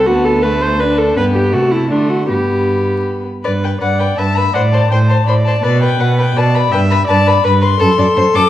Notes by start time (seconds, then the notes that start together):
0.06 D2 B3 F#4 A5
0.25 A4
0.43 A3 B4
0.62 C5
0.80 D4 B4
0.98 A4
1.17 G2 B3 B4 G5
1.35 G4
1.53 C3 A3 F#4 A5
1.71 E4
1.90 D3 A3 D4 C6
2.09 F#4
2.29 G2 B3 G4 B5
3.44 G2 B4 D5
3.64 B4 G5
3.81 G2 B4 D5 F#5
3.99 B4 G5
4.18 G2 B4 E5 A5
4.37 B4 B5
4.54 A2 C5 D5 F#5
4.73 C5 A5
4.91 A2 C5 G5
5.08 C5 A5
5.27 A2 C5 D5 B5
5.45 C5 A5
5.63 B2 B4 D5
5.82 B4 G5
5.99 B2 B4 F#5
6.19 B4 G5
6.36 B2 B4 D5 A5
6.55 B4 B5
6.72 G2 B4 E5 G5
6.91 B4 B5
7.08 G2 B4 D5 A5
7.26 B4 B5
7.44 G2 B4 B5
7.62 B4 C6
7.80 F#2 A4
7.98 F#2 D5
8.17 F#2 C5
8.34 F#2 A4 D6